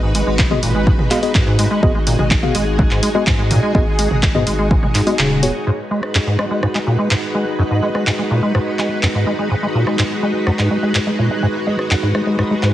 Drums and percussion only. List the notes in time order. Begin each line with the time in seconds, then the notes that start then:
0.15 open hi-hat
0.39 kick, clap
0.51 mid tom
0.63 open hi-hat
0.87 kick
0.99 mid tom
1.11 clap, open hi-hat
1.23 open hi-hat
1.35 kick, clap
1.59 open hi-hat
1.83 kick
2.07 open hi-hat
2.19 mid tom
2.31 kick, clap
2.43 mid tom
2.55 open hi-hat
2.79 kick
2.91 clap
3.03 open hi-hat
3.27 kick, clap
3.51 mid tom, open hi-hat
3.75 kick
3.99 open hi-hat
4.11 mid tom
4.23 kick, clap
4.35 mid tom
4.47 open hi-hat
4.71 kick
4.83 mid tom
4.95 clap, open hi-hat
5.07 open hi-hat
5.19 clap
5.43 open hi-hat
6.03 cross-stick
6.15 clap
6.39 cross-stick
6.63 cross-stick
6.75 clap
7.11 clap
7.95 cross-stick
8.07 clap
8.55 cross-stick
8.79 clap
9.03 clap
9.87 cross-stick
9.99 clap
10.47 cross-stick
10.59 clap
10.95 clap
11.79 cross-stick
11.91 clap
12.15 cross-stick
12.39 cross-stick
12.63 clap